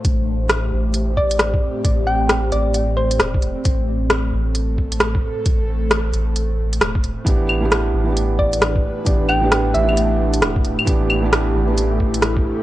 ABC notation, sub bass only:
X:1
M:4/4
L:1/8
Q:"Swing 16ths" 1/4=133
K:Am
V:1 name="Sub bass" clef=bass
A,,,3 A,,,4 z | A,,,3 A,,,3 E,,, E,,, | A,,,3 A,,,4 z | A,,,3 A,,,3 E,,, E,,, |
A,,,3 A,,,4 z | A,,,3 A,,,3 E,,, E,,, | A,,,3 A,,,4 z |]